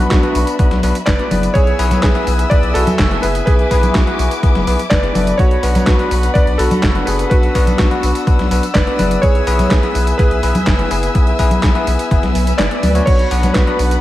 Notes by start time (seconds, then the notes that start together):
Already playing: B3 D4 F#4 B4 E5 B5
0.10 B1 D4 F#4, kick, snare, clap, closed hi-hat, tambourine
0.23 B3 D4 F#4 B4, closed hi-hat
0.35 B1, open hi-hat, tambourine
0.47 closed hi-hat, tambourine
0.59 B1 B3 D4 F#4 B4, kick, closed hi-hat, tambourine
0.71 B1, snare, closed hi-hat, high conga
0.83 B1 B3 D4 F#4 B4, open hi-hat, tambourine
0.95 closed hi-hat, tambourine
1.06 F#1 B4 D5, kick, snare, clap, closed hi-hat, tambourine
1.19 B3 D4 F#4 B4, closed hi-hat
1.31 F#1 B3 E4 G#4 B4, open hi-hat, tambourine, high conga
1.43 closed hi-hat, tambourine
1.54 B1 G#4 C#5 E5 G#5 E6, kick, closed hi-hat, tambourine
1.67 closed hi-hat
1.79 B1 B3 E4 G#4 B4, open hi-hat, tambourine
1.91 snare, closed hi-hat, tambourine, high conga
2.02 B1 G#4 B4, kick, snare, clap, closed hi-hat, tambourine
2.15 B3 E4 G#4 B4, closed hi-hat
2.27 B1, open hi-hat, tambourine
2.39 closed hi-hat, tambourine
2.50 B1 B3 E4 G#4 B4 D5, kick, closed hi-hat, tambourine
2.63 B1, closed hi-hat
2.74 B1 B3 E4 F#4 G#4 A4 B4, open hi-hat, tambourine
2.87 closed hi-hat, tambourine, high conga
2.99 F#1, kick, snare, clap, closed hi-hat, tambourine
3.11 B3 E4 G#4 B4, closed hi-hat
3.22 F#1 B3 E4 G#4 B4, open hi-hat, tambourine
3.35 closed hi-hat, tambourine
3.46 B1 G#4 B4 D6, kick, closed hi-hat, tambourine
3.59 closed hi-hat
3.71 B1 B3 E4 G#4 B4, kick, open hi-hat, tambourine
3.83 closed hi-hat, tambourine, high conga
3.94 B1 B3 F#4, kick, snare, clap, closed hi-hat, tambourine
4.07 B3 E4 G#4 B4, closed hi-hat
4.19 B1, open hi-hat, tambourine
4.31 closed hi-hat, tambourine
4.43 B1 B3 E4 G#4 B4, kick, closed hi-hat, tambourine
4.55 F#1, snare, closed hi-hat, high conga
4.67 B1 B3 E4 G#4 B4, open hi-hat, tambourine
4.79 closed hi-hat, tambourine
4.90 F#1 B4 D5, kick, snare, clap, closed hi-hat, tambourine
5.03 B3 E4 G#4 B4, closed hi-hat
5.15 F#1 B3 D4 F#4 A4, open hi-hat, tambourine, high conga
5.27 closed hi-hat, tambourine
5.38 B1 D4 F#4 C#5 F#5 B5, kick, closed hi-hat, tambourine
5.51 closed hi-hat
5.63 B1 B3 D4 F#4 B4, open hi-hat, tambourine
5.75 snare, closed hi-hat, tambourine, high conga
5.86 B1 F#4 B4, kick, snare, clap, closed hi-hat
5.99 B3 D4 F#4 B4, closed hi-hat
6.11 B1, open hi-hat, tambourine
6.23 closed hi-hat, tambourine
6.34 B1 B3 D4 F#4 B4 D5, kick, closed hi-hat, tambourine
6.47 B1, closed hi-hat
6.58 B1 B3 D4 F#4 A4 B4, open hi-hat, tambourine
6.71 closed hi-hat, tambourine, high conga
6.83 F#1, kick, snare, clap, closed hi-hat, tambourine
6.95 B3 D4 F#4 B4, closed hi-hat
7.06 F#1 B3 D4 F#4 G#4 A4 B4, open hi-hat, tambourine
7.19 closed hi-hat, tambourine
7.30 B1 F#4 B4 E6, kick, closed hi-hat, tambourine
7.43 closed hi-hat
7.55 B1 B3 D4 F#4 B4, kick, open hi-hat, tambourine
7.67 closed hi-hat, tambourine, high conga
7.78 B1 D4 F#4, kick, snare, clap, closed hi-hat, tambourine
7.91 B3 D4 F#4 B4, closed hi-hat
8.03 B1, open hi-hat, tambourine
8.15 closed hi-hat, tambourine
8.27 B1 B3 D4 F#4 B4, kick, closed hi-hat, tambourine
8.39 B1, snare, closed hi-hat, high conga
8.51 B1 B3 D4 F#4 B4, open hi-hat, tambourine
8.63 closed hi-hat, tambourine
8.74 F#1 B4 D5, kick, snare, clap, closed hi-hat
8.87 B3 D4 F#4 B4, closed hi-hat
8.99 F#1 B3 E4 G#4 B4, open hi-hat, tambourine, high conga
9.11 closed hi-hat, tambourine
9.22 B1 G#4 B4 C#5 E5 G#5, kick, closed hi-hat, tambourine
9.35 closed hi-hat
9.47 B1 B3 E4 G#4 B4, open hi-hat, tambourine
9.59 snare, closed hi-hat, tambourine, high conga
9.70 B1 G#4 B4, kick, snare, clap, closed hi-hat, tambourine
9.83 B3 E4 G#4 B4, closed hi-hat
9.95 B1, open hi-hat, tambourine
10.07 closed hi-hat, tambourine
10.18 B1 B3 E4 G#4 B4, kick, closed hi-hat, tambourine
10.31 B1, closed hi-hat
10.43 B1 B3 E4 G#4 B4, open hi-hat, tambourine
10.55 closed hi-hat, tambourine, high conga
10.67 F#1, kick, snare, clap, closed hi-hat, tambourine
10.79 B3 E4 G#4 B4, closed hi-hat
10.91 F#1 B3 E4 G#4 B4, open hi-hat, tambourine
11.03 closed hi-hat, tambourine
11.15 B1, kick, closed hi-hat, tambourine
11.27 closed hi-hat
11.39 B1 B3 E4 G#4 B4, kick, open hi-hat, tambourine
11.51 closed hi-hat, tambourine, high conga
11.63 B1, kick, snare, clap, closed hi-hat, tambourine
11.75 B3 E4 G#4 B4, closed hi-hat
11.87 B1, open hi-hat, tambourine
11.99 closed hi-hat, tambourine
12.11 F#1 B3 E4 G#4 B4, kick, closed hi-hat, tambourine, swell
12.23 B1, snare, closed hi-hat, high conga
12.35 B1, open hi-hat, tambourine
12.47 closed hi-hat, tambourine
12.58 F#1 B3 E4 G#4 B4 D5, snare, clap, closed hi-hat, tambourine
12.71 closed hi-hat
12.83 D2, open hi-hat, tambourine, high conga
12.95 B3 D4 F#4 C#5, closed hi-hat, tambourine
13.06 B1 D4 F#4 C#5 F#5 B5, kick, closed hi-hat, crash, tambourine
13.19 closed hi-hat
13.31 B1 B3 D4 F#4 B4, open hi-hat, tambourine
13.43 snare, closed hi-hat, tambourine, high conga
13.54 B1 F#4 B4, kick, snare, clap, closed hi-hat, tambourine
13.67 B3 D4 F#4 B4, closed hi-hat
13.79 B1, open hi-hat, tambourine
13.91 closed hi-hat, tambourine